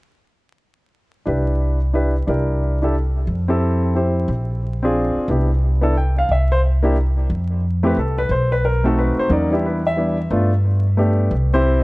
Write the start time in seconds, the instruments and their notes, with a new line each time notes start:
1.25 upright bass C2, grand piano D4 E4 G4 B4
1.93 grand piano D4 E4 G4 B4
2.27 upright bass C2, grand piano D4 E4 G4 A#4
2.82 grand piano D4 E4 G4 A4
3.27 upright bass F2
3.48 grand piano C4 E4 G4 A4
3.95 grand piano C4 E4 G4 C5
4.28 upright bass A#1
4.83 grand piano C4 D4 F4 G#4
5.16 muted upright bass stroke
5.28 upright bass C2, grand piano B3 D4 E4 G4
5.81 grand piano B3 D4 E4 A4
5.97 grand piano G5
6.19 grand piano F5
6.29 upright bass C2, grand piano E5
6.52 grand piano C5
6.82 grand piano A#3 D4 E4 G4
7.30 upright bass F2
7.83 grand piano A3 C4 E4 G4 B4
7.97 upright bass C2, grand piano A4
8.18 grand piano B4
8.29 upright bass B1, grand piano C5
8.52 grand piano B4
8.65 grand piano A#4
8.84 grand piano A3 C4 D#4 F#4 A4
8.99 grand piano B4
9.17 grand piano C5, muted upright bass stroke
9.29 upright bass E2, grand piano F#3 A#3 C#4 D#4 D5
9.50 grand piano G3 B3 D4 E4 G4
9.66 grand piano B4
9.87 grand piano E5
9.96 grand piano G3 B3 D4 E4
10.30 upright bass G2, grand piano A3 B3 D4 F4
10.97 grand piano A3 B3 D4 G4
11.31 upright bass C2
11.54 grand piano C4 E4 G4 C5